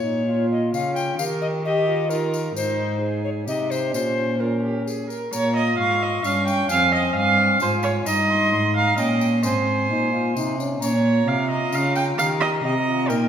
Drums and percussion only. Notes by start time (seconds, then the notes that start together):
0.74 tambourine
0.96 tambourine
1.19 tambourine
2.10 tambourine
2.34 tambourine
2.57 tambourine
3.48 tambourine
3.71 tambourine
3.94 tambourine
4.87 tambourine
5.10 tambourine
5.33 tambourine
6.24 tambourine
6.48 tambourine
6.69 tambourine
7.60 tambourine
7.83 tambourine
8.06 tambourine
8.98 tambourine
9.21 tambourine
9.43 tambourine
10.37 tambourine
10.60 tambourine
10.82 tambourine
11.72 tambourine
11.95 tambourine
12.19 tambourine
13.10 tambourine